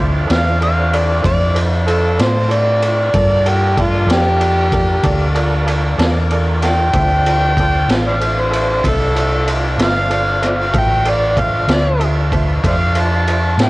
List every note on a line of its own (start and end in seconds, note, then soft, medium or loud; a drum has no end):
0.00 0.27 D2 medium
0.00 3.11 C4 medium
0.00 3.11 D4 medium
0.00 0.21 E4 medium
0.00 0.20 F4 medium
0.00 3.11 F4 medium
0.00 0.21 A4 medium
0.00 3.11 A4 medium
0.00 0.21 C5 medium
0.27 1.22 E2 medium
0.27 0.52 E4 soft
0.27 0.52 F4 soft
0.27 0.52 A4 soft
0.27 0.52 D5 medium
0.27 ride medium
0.31 0.61 F5 medium
0.31 snare loud
0.61 0.85 E4 medium
0.61 0.85 F4 soft
0.61 0.85 A4 soft
0.61 0.86 D5 medium
0.61 0.96 F5 medium
0.61 ride medium
0.93 1.17 E4 medium
0.93 1.17 F4 soft
0.93 1.17 A4 soft
0.93 1.18 C5 medium
0.93 1.24 D5 medium
0.93 ride medium
1.22 2.17 F2 medium
1.22 1.47 E4 medium
1.22 1.47 F4 soft
1.22 1.48 A4 soft
1.22 1.48 C5 medium
1.22 1.56 D5 medium
1.22 kick medium
1.22 ride medium
1.55 1.79 E4 medium
1.55 1.79 F4 soft
1.55 1.80 A4 soft
1.55 1.79 C5 medium
1.55 ride medium
1.86 2.11 E4 medium
1.86 2.11 F4 soft
1.86 2.11 A4 soft
1.86 2.23 A4 medium
1.86 2.11 C5 medium
1.86 ride medium
2.17 3.12 A2 medium
2.17 2.42 E4 medium
2.17 2.43 F4 soft
2.17 2.43 A4 soft
2.17 2.43 D5 medium
2.17 snare loud
2.17 ride medium
2.22 2.53 C5 medium
2.49 2.74 E4 medium
2.49 2.74 F4 soft
2.49 2.74 A4 soft
2.49 2.74 C5 medium
2.49 3.50 D5 medium
2.49 ride medium
2.82 3.06 E4 medium
2.82 3.06 F4 soft
2.82 3.06 A4 soft
2.82 3.07 D5 medium
2.82 ride medium
3.13 4.06 G2 medium
3.13 6.90 A#3 medium
3.13 6.90 D4 medium
3.13 3.38 F4 medium
3.13 6.90 F4 medium
3.13 6.89 A4 medium
3.13 3.38 A4 medium
3.13 3.38 A#4 medium
3.13 3.38 D5 medium
3.13 kick loud
3.13 ride medium
3.45 3.69 F4 medium
3.45 3.82 G4 medium
3.45 3.69 A4 medium
3.45 3.70 A#4 medium
3.45 3.69 D5 medium
3.45 ride medium
3.76 4.00 F4 medium
3.76 4.01 A4 soft
3.76 4.01 A#4 soft
3.76 4.01 D5 medium
3.76 kick medium
3.76 ride medium
3.81 4.14 F4 loud
4.07 5.00 F2 medium
4.07 4.32 F4 medium
4.07 4.32 A4 soft
4.07 4.32 A#4 soft
4.07 4.32 D5 medium
4.07 ride medium
4.11 5.33 G4 loud
4.11 snare loud
4.39 4.64 F4 medium
4.39 4.64 A4 soft
4.39 4.64 A#4 medium
4.39 4.64 D5 medium
4.39 ride medium
4.72 4.96 F4 medium
4.72 4.96 A4 medium
4.72 4.96 A#4 medium
4.72 4.97 D5 medium
4.72 kick medium
4.72 ride medium
5.03 5.95 D2 medium
5.03 5.27 F4 medium
5.03 5.28 A4 medium
5.03 5.27 A#4 medium
5.03 5.28 D5 medium
5.03 kick medium
5.03 ride medium
5.35 5.59 F4 medium
5.35 5.59 A4 medium
5.35 5.59 A#4 medium
5.35 5.59 D5 medium
5.35 ride medium
5.66 5.90 F4 medium
5.66 5.91 A4 medium
5.66 5.91 A#4 medium
5.66 5.91 D5 medium
5.66 ride medium
5.98 6.91 E2 medium
5.98 6.22 F4 medium
5.98 6.22 A4 medium
5.98 6.23 A#4 medium
5.98 6.22 D5 medium
5.98 snare loud
5.98 ride medium
6.31 6.55 F4 medium
6.31 6.55 A4 medium
6.31 6.55 A#4 medium
6.31 6.55 D5 medium
6.31 ride medium
6.62 6.86 F4 medium
6.62 6.86 A4 soft
6.62 6.87 A#4 medium
6.62 6.86 D5 medium
6.62 8.01 G5 loud
6.62 snare soft
6.62 ride medium
6.93 7.86 D2 medium
6.93 10.70 C4 medium
6.93 10.69 D4 medium
6.93 10.69 F4 medium
6.93 7.17 F4 medium
6.93 10.69 A4 medium
6.93 7.17 A4 medium
6.93 7.18 C5 medium
6.93 7.18 E5 medium
6.93 kick loud
6.93 ride medium
7.26 7.49 F4 medium
7.26 7.50 A4 medium
7.26 7.50 C5 medium
7.26 7.50 D5 medium
7.26 ride medium
7.57 7.82 F4 medium
7.57 7.82 A4 medium
7.57 7.82 C5 medium
7.57 7.82 D5 medium
7.57 kick medium
7.57 ride medium
7.88 8.80 A1 medium
7.88 8.13 F4 soft
7.88 8.13 A4 soft
7.88 8.13 C5 soft
7.88 8.14 G5 medium
7.88 snare loud
7.88 ride medium
8.08 8.16 C5 medium
8.08 8.16 D5 medium
8.08 8.42 F5 medium
8.20 8.44 F4 medium
8.20 8.44 A4 medium
8.20 8.44 C5 soft
8.20 8.45 E5 medium
8.20 ride medium
8.41 8.90 C5 medium
8.51 8.75 F4 medium
8.51 8.75 A4 medium
8.51 8.76 C5 soft
8.51 8.75 E5 medium
8.51 ride medium
8.83 9.76 C2 medium
8.83 9.07 F4 medium
8.83 9.07 A4 soft
8.83 9.07 C5 soft
8.83 9.08 E5 medium
8.83 kick medium
8.83 ride medium
8.88 9.47 A4 loud
9.15 9.39 F4 medium
9.15 9.39 A4 soft
9.15 9.39 C5 medium
9.15 9.39 E5 medium
9.15 ride medium
9.47 9.70 F4 medium
9.47 9.71 A4 soft
9.47 9.71 C5 soft
9.47 9.71 E5 medium
9.47 ride medium
9.78 10.70 G1 medium
9.78 10.02 F4 soft
9.78 10.02 A4 soft
9.78 10.02 C5 soft
9.78 10.03 E5 medium
9.78 snare loud
9.78 ride medium
9.83 10.42 F5 loud
10.10 10.34 F4 medium
10.10 10.34 A4 medium
10.10 10.35 C5 soft
10.10 10.34 D5 medium
10.10 ride medium
10.41 10.65 F4 medium
10.41 10.66 A4 soft
10.41 10.66 C5 soft
10.41 10.66 E5 medium
10.41 snare soft
10.41 ride medium
10.47 10.56 C5 medium
10.47 10.55 D5 medium
10.47 10.75 F5 medium
10.70 11.66 A1 medium
10.70 11.04 F#3 medium
10.70 11.03 F4 medium
10.70 10.97 F4 medium
10.70 10.97 A4 medium
10.70 11.05 A#4 medium
10.70 10.98 C5 medium
10.70 11.04 C#5 medium
10.70 kick loud
10.70 ride medium
10.75 10.98 E5 medium
10.75 11.12 G5 medium
11.04 13.70 D4 medium
11.04 13.70 F4 medium
11.04 11.29 F4 medium
11.04 13.70 A4 medium
11.04 11.29 A4 medium
11.04 13.70 C5 medium
11.04 11.30 C5 soft
11.04 11.29 F5 medium
11.04 ride medium
11.10 11.40 D5 medium
11.37 11.61 F4 medium
11.37 11.61 A4 medium
11.37 11.61 C5 soft
11.37 11.61 E5 medium
11.37 11.68 F5 medium
11.37 kick medium
11.37 ride medium
11.67 12.60 D2 medium
11.67 11.92 F4 medium
11.67 11.92 A4 soft
11.67 11.93 C5 soft
11.67 11.93 E5 medium
11.67 snare loud
11.67 ride medium
11.73 12.02 D5 loud
12.00 12.24 F4 medium
12.00 12.24 A4 soft
12.00 12.24 C5 soft
12.00 12.24 E5 medium
12.00 ride medium
12.31 12.56 F4 medium
12.31 12.56 A4 medium
12.31 12.56 C5 medium
12.31 12.56 E5 medium
12.31 kick medium
12.31 ride medium
12.63 13.56 F2 medium
12.63 12.87 F4 medium
12.63 12.88 A4 soft
12.63 12.88 C5 medium
12.63 12.88 E5 medium
12.63 kick medium
12.63 ride medium
12.68 12.76 C5 medium
12.68 12.74 D5 medium
12.68 13.02 F5 medium
12.95 13.19 F4 medium
12.95 13.19 A4 soft
12.95 13.19 C5 soft
12.95 13.20 E5 medium
12.95 ride medium
13.01 13.60 A5 medium
13.28 13.51 F4 medium
13.28 13.51 A4 soft
13.28 13.52 C5 soft
13.28 13.52 E5 medium
13.28 ride medium
13.58 13.70 A2 medium
13.58 13.70 F4 medium
13.58 13.70 A4 soft
13.58 13.70 C5 soft
13.58 13.70 E5 medium
13.58 snare loud
13.58 ride medium
13.62 13.70 G5 medium